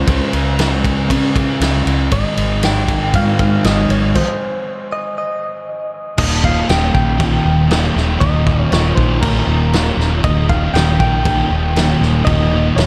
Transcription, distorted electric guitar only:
0.07 C#3 G#3 C#4
1.10 C#3 G#3 C#4
2.12 G#2 D#3 G#3
3.14 G#2 D#3 G#3
6.18 D#2 A#2 D#3
6.43 A#2 D#3
6.68 D#2 A#2 D#3
6.93 A#2 D#3
7.18 D#2 A#2 D#3
7.44 A#2 D#3
7.68 D#2 A#2 D#3
7.94 A#2 D#3
8.19 D#2 A#2 D#3
8.45 A#2 D#3
8.71 D#2 A#2 D#3
8.96 A#2 D#3
9.22 D#2 A#2 D#3
9.47 A#2 D#3
9.72 D#2 A#2 D#3
9.98 A#2 D#3
10.23 D#2 A#2 D#3
10.48 A#2 D#3
10.74 D#2 A#2 D#3
11.00 A#2 D#3
11.24 D#2 A#2 D#3
11.51 A#2 D#3
11.76 D#2 A#2 D#3
12.01 A#2 D#3
12.26 D#2 A#2 D#3
12.51 A#2 D#3
12.76 D#2 A#2 D#3

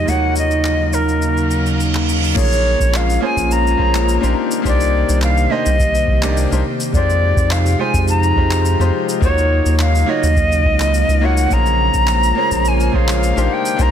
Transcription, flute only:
Already playing: D#5
0.09 F#5
0.38 D#5
0.94 A#4
2.39 C#5
2.96 F5
3.25 G#5
3.52 A#5
4.67 D5
5.23 F5
5.51 D#5
6.94 D5
7.52 F5
7.80 G#5
8.09 A#5
9.22 C#5
9.81 F5
10.09 D#5
11.25 F#5
11.53 A#5
12.68 G#5
12.95 F5
13.53 G5
13.82 A#5

